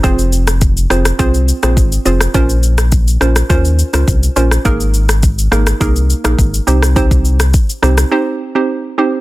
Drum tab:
SH |xxxxxxxxxxxxxxxx|xxxxxxxxxxxxxxxx|xxxxxxxxxxxxxxxx|xxxxxxxx--------|
SD |---r--rr---r---r|---r--rr---r---r|---r--rr---r---r|---r--rr--------|
BD |o---o---o---o---|o---o---o---o---|o---o---o---o---|oo--o-----------|